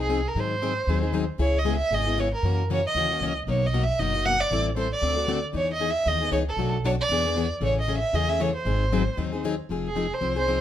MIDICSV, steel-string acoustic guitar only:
0, 0, Header, 1, 2, 480
1, 0, Start_track
1, 0, Key_signature, 4, "minor"
1, 0, Tempo, 259291
1, 657, Time_signature, 4, 2, 24, 8
1, 19638, End_track
2, 0, Start_track
2, 0, Title_t, "Steel-string acoustic guitar"
2, 0, Program_c, 0, 25
2, 171, Note_on_c, 0, 53, 72
2, 176, Note_on_c, 0, 60, 76
2, 184, Note_on_c, 0, 63, 75
2, 188, Note_on_c, 0, 68, 79
2, 366, Note_off_c, 0, 53, 0
2, 369, Note_off_c, 0, 60, 0
2, 372, Note_off_c, 0, 63, 0
2, 375, Note_off_c, 0, 68, 0
2, 665, Note_on_c, 0, 51, 56
2, 679, Note_on_c, 0, 54, 58
2, 680, Note_on_c, 0, 60, 63
2, 682, Note_on_c, 0, 63, 62
2, 693, Note_on_c, 0, 68, 59
2, 1001, Note_off_c, 0, 51, 0
2, 1008, Note_off_c, 0, 54, 0
2, 1009, Note_off_c, 0, 60, 0
2, 1010, Note_off_c, 0, 63, 0
2, 1015, Note_off_c, 0, 68, 0
2, 1137, Note_on_c, 0, 51, 64
2, 1148, Note_on_c, 0, 54, 75
2, 1156, Note_on_c, 0, 60, 73
2, 1159, Note_on_c, 0, 63, 79
2, 1163, Note_on_c, 0, 68, 77
2, 1330, Note_off_c, 0, 51, 0
2, 1335, Note_off_c, 0, 54, 0
2, 1339, Note_off_c, 0, 60, 0
2, 1340, Note_off_c, 0, 63, 0
2, 1342, Note_off_c, 0, 68, 0
2, 1638, Note_on_c, 0, 51, 58
2, 1646, Note_on_c, 0, 60, 66
2, 1647, Note_on_c, 0, 54, 61
2, 1652, Note_on_c, 0, 63, 60
2, 1656, Note_on_c, 0, 68, 67
2, 1858, Note_off_c, 0, 68, 0
2, 1880, Note_on_c, 0, 68, 46
2, 1890, Note_off_c, 0, 63, 0
2, 1894, Note_off_c, 0, 51, 0
2, 1898, Note_off_c, 0, 54, 0
2, 1898, Note_off_c, 0, 60, 0
2, 1912, Note_on_c, 0, 63, 44
2, 1926, Note_on_c, 0, 60, 39
2, 2079, Note_off_c, 0, 60, 0
2, 2083, Note_off_c, 0, 68, 0
2, 2083, Note_on_c, 0, 51, 77
2, 2084, Note_off_c, 0, 63, 0
2, 2099, Note_on_c, 0, 54, 79
2, 2101, Note_on_c, 0, 60, 74
2, 2106, Note_on_c, 0, 63, 84
2, 2112, Note_on_c, 0, 68, 73
2, 2283, Note_off_c, 0, 51, 0
2, 2291, Note_off_c, 0, 54, 0
2, 2292, Note_off_c, 0, 60, 0
2, 2295, Note_off_c, 0, 63, 0
2, 2297, Note_off_c, 0, 68, 0
2, 2556, Note_on_c, 0, 49, 61
2, 2568, Note_on_c, 0, 56, 62
2, 2580, Note_on_c, 0, 68, 71
2, 2581, Note_on_c, 0, 59, 63
2, 2588, Note_on_c, 0, 64, 68
2, 2907, Note_off_c, 0, 49, 0
2, 2913, Note_off_c, 0, 56, 0
2, 2919, Note_off_c, 0, 68, 0
2, 2920, Note_off_c, 0, 59, 0
2, 2923, Note_off_c, 0, 64, 0
2, 3046, Note_on_c, 0, 49, 77
2, 3051, Note_on_c, 0, 56, 77
2, 3058, Note_on_c, 0, 59, 74
2, 3064, Note_on_c, 0, 64, 72
2, 3069, Note_on_c, 0, 68, 86
2, 3245, Note_off_c, 0, 49, 0
2, 3247, Note_off_c, 0, 56, 0
2, 3251, Note_off_c, 0, 59, 0
2, 3254, Note_off_c, 0, 64, 0
2, 3256, Note_off_c, 0, 68, 0
2, 3533, Note_on_c, 0, 49, 57
2, 3537, Note_on_c, 0, 56, 64
2, 3546, Note_on_c, 0, 59, 60
2, 3560, Note_on_c, 0, 64, 67
2, 3563, Note_on_c, 0, 68, 71
2, 3781, Note_off_c, 0, 68, 0
2, 3802, Note_off_c, 0, 49, 0
2, 3803, Note_on_c, 0, 68, 46
2, 3804, Note_off_c, 0, 56, 0
2, 3804, Note_off_c, 0, 64, 0
2, 3808, Note_off_c, 0, 59, 0
2, 3826, Note_on_c, 0, 64, 45
2, 3846, Note_on_c, 0, 59, 43
2, 4005, Note_off_c, 0, 68, 0
2, 4007, Note_off_c, 0, 59, 0
2, 4017, Note_off_c, 0, 64, 0
2, 4024, Note_on_c, 0, 49, 75
2, 4029, Note_on_c, 0, 59, 82
2, 4034, Note_on_c, 0, 56, 80
2, 4038, Note_on_c, 0, 64, 83
2, 4044, Note_on_c, 0, 68, 86
2, 4214, Note_off_c, 0, 49, 0
2, 4216, Note_off_c, 0, 59, 0
2, 4219, Note_off_c, 0, 56, 0
2, 4221, Note_off_c, 0, 64, 0
2, 4224, Note_off_c, 0, 68, 0
2, 4516, Note_on_c, 0, 49, 59
2, 4528, Note_on_c, 0, 52, 59
2, 4533, Note_on_c, 0, 61, 62
2, 4535, Note_on_c, 0, 58, 62
2, 4543, Note_on_c, 0, 66, 67
2, 4848, Note_off_c, 0, 49, 0
2, 4853, Note_off_c, 0, 52, 0
2, 4856, Note_off_c, 0, 61, 0
2, 4857, Note_off_c, 0, 58, 0
2, 4861, Note_off_c, 0, 66, 0
2, 4999, Note_on_c, 0, 49, 73
2, 5003, Note_on_c, 0, 52, 73
2, 5009, Note_on_c, 0, 58, 77
2, 5016, Note_on_c, 0, 61, 84
2, 5018, Note_on_c, 0, 66, 86
2, 5181, Note_off_c, 0, 49, 0
2, 5183, Note_off_c, 0, 52, 0
2, 5186, Note_off_c, 0, 58, 0
2, 5190, Note_off_c, 0, 61, 0
2, 5191, Note_off_c, 0, 66, 0
2, 5475, Note_on_c, 0, 49, 65
2, 5483, Note_on_c, 0, 52, 70
2, 5485, Note_on_c, 0, 58, 70
2, 5492, Note_on_c, 0, 61, 71
2, 5502, Note_on_c, 0, 66, 75
2, 5726, Note_off_c, 0, 66, 0
2, 5733, Note_off_c, 0, 49, 0
2, 5737, Note_off_c, 0, 52, 0
2, 5738, Note_off_c, 0, 58, 0
2, 5742, Note_off_c, 0, 61, 0
2, 5749, Note_on_c, 0, 66, 53
2, 5762, Note_on_c, 0, 61, 50
2, 5791, Note_on_c, 0, 58, 38
2, 5938, Note_off_c, 0, 66, 0
2, 5945, Note_off_c, 0, 58, 0
2, 5945, Note_off_c, 0, 61, 0
2, 5950, Note_on_c, 0, 49, 79
2, 5965, Note_on_c, 0, 52, 81
2, 5966, Note_on_c, 0, 61, 84
2, 5967, Note_on_c, 0, 58, 81
2, 5980, Note_on_c, 0, 66, 85
2, 6137, Note_off_c, 0, 49, 0
2, 6145, Note_off_c, 0, 52, 0
2, 6145, Note_off_c, 0, 58, 0
2, 6145, Note_off_c, 0, 61, 0
2, 6152, Note_off_c, 0, 66, 0
2, 6435, Note_on_c, 0, 47, 58
2, 6440, Note_on_c, 0, 54, 59
2, 6446, Note_on_c, 0, 58, 69
2, 6461, Note_on_c, 0, 63, 68
2, 6462, Note_on_c, 0, 66, 70
2, 6767, Note_off_c, 0, 47, 0
2, 6769, Note_off_c, 0, 54, 0
2, 6773, Note_off_c, 0, 58, 0
2, 6780, Note_off_c, 0, 63, 0
2, 6781, Note_off_c, 0, 66, 0
2, 6912, Note_on_c, 0, 47, 78
2, 6919, Note_on_c, 0, 54, 83
2, 6924, Note_on_c, 0, 63, 80
2, 6925, Note_on_c, 0, 58, 74
2, 6930, Note_on_c, 0, 66, 87
2, 7098, Note_off_c, 0, 47, 0
2, 7101, Note_off_c, 0, 54, 0
2, 7104, Note_off_c, 0, 58, 0
2, 7104, Note_off_c, 0, 63, 0
2, 7106, Note_off_c, 0, 66, 0
2, 7391, Note_on_c, 0, 47, 65
2, 7393, Note_on_c, 0, 54, 68
2, 7396, Note_on_c, 0, 63, 70
2, 7400, Note_on_c, 0, 58, 68
2, 7410, Note_on_c, 0, 66, 76
2, 7646, Note_off_c, 0, 66, 0
2, 7651, Note_off_c, 0, 47, 0
2, 7652, Note_off_c, 0, 54, 0
2, 7654, Note_off_c, 0, 63, 0
2, 7655, Note_off_c, 0, 58, 0
2, 7668, Note_on_c, 0, 66, 54
2, 7697, Note_on_c, 0, 63, 47
2, 7710, Note_on_c, 0, 58, 41
2, 7857, Note_off_c, 0, 66, 0
2, 7859, Note_off_c, 0, 58, 0
2, 7864, Note_off_c, 0, 63, 0
2, 7865, Note_on_c, 0, 47, 73
2, 7876, Note_on_c, 0, 54, 75
2, 7881, Note_on_c, 0, 58, 87
2, 7886, Note_on_c, 0, 63, 79
2, 7893, Note_on_c, 0, 66, 87
2, 8054, Note_off_c, 0, 47, 0
2, 8060, Note_off_c, 0, 54, 0
2, 8062, Note_off_c, 0, 58, 0
2, 8065, Note_off_c, 0, 63, 0
2, 8068, Note_off_c, 0, 66, 0
2, 8354, Note_on_c, 0, 52, 62
2, 8359, Note_on_c, 0, 55, 58
2, 8368, Note_on_c, 0, 60, 67
2, 8374, Note_on_c, 0, 64, 69
2, 8379, Note_on_c, 0, 69, 67
2, 8687, Note_off_c, 0, 52, 0
2, 8689, Note_off_c, 0, 55, 0
2, 8693, Note_off_c, 0, 60, 0
2, 8697, Note_off_c, 0, 64, 0
2, 8699, Note_off_c, 0, 69, 0
2, 8816, Note_on_c, 0, 52, 78
2, 8817, Note_on_c, 0, 55, 79
2, 8822, Note_on_c, 0, 60, 75
2, 8827, Note_on_c, 0, 64, 83
2, 8838, Note_on_c, 0, 69, 82
2, 9010, Note_off_c, 0, 52, 0
2, 9011, Note_off_c, 0, 55, 0
2, 9013, Note_off_c, 0, 60, 0
2, 9015, Note_off_c, 0, 64, 0
2, 9021, Note_off_c, 0, 69, 0
2, 9289, Note_on_c, 0, 50, 59
2, 9306, Note_on_c, 0, 57, 68
2, 9310, Note_on_c, 0, 60, 65
2, 9311, Note_on_c, 0, 69, 73
2, 9315, Note_on_c, 0, 66, 69
2, 9538, Note_off_c, 0, 69, 0
2, 9558, Note_off_c, 0, 66, 0
2, 9560, Note_off_c, 0, 50, 0
2, 9560, Note_on_c, 0, 69, 54
2, 9565, Note_off_c, 0, 60, 0
2, 9569, Note_off_c, 0, 57, 0
2, 9580, Note_on_c, 0, 66, 46
2, 9588, Note_on_c, 0, 60, 41
2, 9761, Note_off_c, 0, 60, 0
2, 9762, Note_off_c, 0, 66, 0
2, 9764, Note_off_c, 0, 69, 0
2, 9768, Note_on_c, 0, 50, 82
2, 9773, Note_on_c, 0, 57, 77
2, 9783, Note_on_c, 0, 60, 83
2, 9785, Note_on_c, 0, 66, 88
2, 9791, Note_on_c, 0, 69, 88
2, 9966, Note_off_c, 0, 50, 0
2, 9968, Note_off_c, 0, 57, 0
2, 9973, Note_off_c, 0, 60, 0
2, 9974, Note_off_c, 0, 66, 0
2, 9977, Note_off_c, 0, 69, 0
2, 10234, Note_on_c, 0, 52, 57
2, 10247, Note_on_c, 0, 59, 65
2, 10260, Note_on_c, 0, 63, 70
2, 10267, Note_on_c, 0, 68, 65
2, 10586, Note_off_c, 0, 52, 0
2, 10593, Note_off_c, 0, 59, 0
2, 10600, Note_off_c, 0, 63, 0
2, 10603, Note_off_c, 0, 68, 0
2, 10736, Note_on_c, 0, 52, 78
2, 10744, Note_on_c, 0, 59, 75
2, 10748, Note_on_c, 0, 63, 78
2, 10757, Note_on_c, 0, 68, 76
2, 10930, Note_off_c, 0, 52, 0
2, 10934, Note_off_c, 0, 59, 0
2, 10936, Note_off_c, 0, 63, 0
2, 10940, Note_off_c, 0, 68, 0
2, 11219, Note_on_c, 0, 52, 61
2, 11224, Note_on_c, 0, 59, 62
2, 11231, Note_on_c, 0, 63, 72
2, 11243, Note_on_c, 0, 68, 65
2, 11470, Note_off_c, 0, 68, 0
2, 11485, Note_off_c, 0, 52, 0
2, 11488, Note_off_c, 0, 59, 0
2, 11491, Note_off_c, 0, 63, 0
2, 11492, Note_on_c, 0, 68, 55
2, 11515, Note_on_c, 0, 63, 48
2, 11536, Note_on_c, 0, 59, 42
2, 11676, Note_off_c, 0, 63, 0
2, 11681, Note_off_c, 0, 59, 0
2, 11684, Note_on_c, 0, 52, 76
2, 11690, Note_off_c, 0, 68, 0
2, 11698, Note_on_c, 0, 63, 89
2, 11703, Note_on_c, 0, 59, 89
2, 11713, Note_on_c, 0, 68, 87
2, 11884, Note_off_c, 0, 52, 0
2, 11891, Note_off_c, 0, 63, 0
2, 11893, Note_off_c, 0, 59, 0
2, 11899, Note_off_c, 0, 68, 0
2, 12180, Note_on_c, 0, 47, 61
2, 12186, Note_on_c, 0, 54, 59
2, 12198, Note_on_c, 0, 57, 69
2, 12204, Note_on_c, 0, 62, 71
2, 12206, Note_on_c, 0, 66, 72
2, 12520, Note_off_c, 0, 47, 0
2, 12523, Note_off_c, 0, 54, 0
2, 12529, Note_off_c, 0, 57, 0
2, 12532, Note_off_c, 0, 62, 0
2, 12533, Note_off_c, 0, 66, 0
2, 12671, Note_on_c, 0, 54, 75
2, 12672, Note_on_c, 0, 47, 81
2, 12684, Note_on_c, 0, 57, 76
2, 12687, Note_on_c, 0, 62, 76
2, 12690, Note_on_c, 0, 66, 83
2, 12858, Note_off_c, 0, 47, 0
2, 12858, Note_off_c, 0, 54, 0
2, 12864, Note_off_c, 0, 57, 0
2, 12866, Note_off_c, 0, 62, 0
2, 12867, Note_off_c, 0, 66, 0
2, 13168, Note_on_c, 0, 52, 61
2, 13173, Note_on_c, 0, 62, 72
2, 13178, Note_on_c, 0, 59, 64
2, 13189, Note_on_c, 0, 68, 70
2, 13407, Note_off_c, 0, 68, 0
2, 13420, Note_off_c, 0, 52, 0
2, 13423, Note_off_c, 0, 62, 0
2, 13425, Note_off_c, 0, 59, 0
2, 13429, Note_on_c, 0, 68, 52
2, 13443, Note_on_c, 0, 62, 45
2, 13465, Note_on_c, 0, 59, 40
2, 13606, Note_off_c, 0, 59, 0
2, 13618, Note_off_c, 0, 62, 0
2, 13619, Note_off_c, 0, 68, 0
2, 13620, Note_on_c, 0, 52, 76
2, 13628, Note_on_c, 0, 59, 86
2, 13640, Note_on_c, 0, 62, 94
2, 13651, Note_on_c, 0, 68, 93
2, 13813, Note_off_c, 0, 52, 0
2, 13816, Note_off_c, 0, 59, 0
2, 13822, Note_off_c, 0, 62, 0
2, 13828, Note_off_c, 0, 68, 0
2, 14086, Note_on_c, 0, 49, 67
2, 14095, Note_on_c, 0, 52, 68
2, 14097, Note_on_c, 0, 57, 64
2, 14100, Note_on_c, 0, 61, 70
2, 14113, Note_on_c, 0, 68, 70
2, 14433, Note_off_c, 0, 49, 0
2, 14438, Note_off_c, 0, 52, 0
2, 14438, Note_off_c, 0, 57, 0
2, 14440, Note_off_c, 0, 61, 0
2, 14447, Note_off_c, 0, 68, 0
2, 14580, Note_on_c, 0, 49, 75
2, 14586, Note_on_c, 0, 52, 73
2, 14593, Note_on_c, 0, 57, 75
2, 14595, Note_on_c, 0, 68, 84
2, 14599, Note_on_c, 0, 61, 84
2, 14772, Note_off_c, 0, 49, 0
2, 14776, Note_off_c, 0, 52, 0
2, 14779, Note_off_c, 0, 57, 0
2, 14780, Note_off_c, 0, 68, 0
2, 14782, Note_off_c, 0, 61, 0
2, 15055, Note_on_c, 0, 49, 66
2, 15068, Note_on_c, 0, 52, 65
2, 15076, Note_on_c, 0, 57, 64
2, 15079, Note_on_c, 0, 61, 73
2, 15081, Note_on_c, 0, 68, 77
2, 15307, Note_off_c, 0, 68, 0
2, 15324, Note_off_c, 0, 49, 0
2, 15329, Note_on_c, 0, 68, 51
2, 15330, Note_off_c, 0, 52, 0
2, 15334, Note_off_c, 0, 57, 0
2, 15336, Note_off_c, 0, 61, 0
2, 15358, Note_on_c, 0, 61, 45
2, 15372, Note_on_c, 0, 57, 44
2, 15529, Note_off_c, 0, 57, 0
2, 15529, Note_off_c, 0, 68, 0
2, 15538, Note_off_c, 0, 61, 0
2, 15544, Note_on_c, 0, 49, 82
2, 15551, Note_on_c, 0, 57, 92
2, 15552, Note_on_c, 0, 52, 80
2, 15560, Note_on_c, 0, 61, 94
2, 15569, Note_on_c, 0, 68, 93
2, 15734, Note_off_c, 0, 49, 0
2, 15738, Note_off_c, 0, 52, 0
2, 15738, Note_off_c, 0, 57, 0
2, 15742, Note_off_c, 0, 61, 0
2, 15747, Note_off_c, 0, 68, 0
2, 16023, Note_on_c, 0, 51, 60
2, 16026, Note_on_c, 0, 54, 60
2, 16040, Note_on_c, 0, 60, 65
2, 16045, Note_on_c, 0, 63, 70
2, 16047, Note_on_c, 0, 68, 70
2, 16361, Note_off_c, 0, 51, 0
2, 16363, Note_off_c, 0, 54, 0
2, 16370, Note_off_c, 0, 60, 0
2, 16372, Note_off_c, 0, 63, 0
2, 16374, Note_off_c, 0, 68, 0
2, 16513, Note_on_c, 0, 51, 76
2, 16521, Note_on_c, 0, 54, 83
2, 16525, Note_on_c, 0, 60, 83
2, 16528, Note_on_c, 0, 63, 79
2, 16535, Note_on_c, 0, 68, 90
2, 16699, Note_off_c, 0, 51, 0
2, 16703, Note_off_c, 0, 54, 0
2, 16704, Note_off_c, 0, 60, 0
2, 16706, Note_off_c, 0, 63, 0
2, 16710, Note_off_c, 0, 68, 0
2, 16978, Note_on_c, 0, 54, 65
2, 16981, Note_on_c, 0, 51, 65
2, 16992, Note_on_c, 0, 60, 67
2, 16995, Note_on_c, 0, 63, 73
2, 17004, Note_on_c, 0, 68, 75
2, 17240, Note_off_c, 0, 68, 0
2, 17245, Note_off_c, 0, 54, 0
2, 17246, Note_off_c, 0, 51, 0
2, 17252, Note_off_c, 0, 60, 0
2, 17253, Note_off_c, 0, 63, 0
2, 17262, Note_on_c, 0, 68, 51
2, 17287, Note_on_c, 0, 63, 48
2, 17307, Note_on_c, 0, 60, 39
2, 17455, Note_off_c, 0, 68, 0
2, 17467, Note_off_c, 0, 63, 0
2, 17472, Note_off_c, 0, 60, 0
2, 17477, Note_on_c, 0, 51, 75
2, 17485, Note_on_c, 0, 54, 88
2, 17493, Note_on_c, 0, 63, 86
2, 17495, Note_on_c, 0, 60, 84
2, 17496, Note_on_c, 0, 68, 85
2, 17660, Note_off_c, 0, 51, 0
2, 17664, Note_off_c, 0, 54, 0
2, 17668, Note_off_c, 0, 63, 0
2, 17669, Note_off_c, 0, 60, 0
2, 17670, Note_off_c, 0, 68, 0
2, 17962, Note_on_c, 0, 53, 60
2, 17967, Note_on_c, 0, 60, 60
2, 17977, Note_on_c, 0, 63, 64
2, 17985, Note_on_c, 0, 68, 62
2, 18290, Note_off_c, 0, 53, 0
2, 18293, Note_off_c, 0, 60, 0
2, 18298, Note_off_c, 0, 63, 0
2, 18302, Note_off_c, 0, 68, 0
2, 18429, Note_on_c, 0, 53, 67
2, 18438, Note_on_c, 0, 60, 77
2, 18446, Note_on_c, 0, 63, 74
2, 18455, Note_on_c, 0, 68, 74
2, 18616, Note_off_c, 0, 53, 0
2, 18621, Note_off_c, 0, 60, 0
2, 18625, Note_off_c, 0, 63, 0
2, 18629, Note_off_c, 0, 68, 0
2, 18899, Note_on_c, 0, 53, 60
2, 18909, Note_on_c, 0, 60, 59
2, 18919, Note_on_c, 0, 63, 61
2, 18929, Note_on_c, 0, 68, 68
2, 19159, Note_off_c, 0, 68, 0
2, 19165, Note_off_c, 0, 53, 0
2, 19170, Note_off_c, 0, 60, 0
2, 19175, Note_off_c, 0, 63, 0
2, 19181, Note_on_c, 0, 68, 51
2, 19202, Note_on_c, 0, 63, 46
2, 19227, Note_on_c, 0, 60, 41
2, 19365, Note_off_c, 0, 60, 0
2, 19374, Note_off_c, 0, 68, 0
2, 19378, Note_off_c, 0, 63, 0
2, 19380, Note_on_c, 0, 53, 75
2, 19387, Note_on_c, 0, 60, 83
2, 19399, Note_on_c, 0, 68, 87
2, 19400, Note_on_c, 0, 63, 83
2, 19571, Note_off_c, 0, 53, 0
2, 19575, Note_off_c, 0, 60, 0
2, 19581, Note_off_c, 0, 63, 0
2, 19581, Note_off_c, 0, 68, 0
2, 19638, End_track
0, 0, End_of_file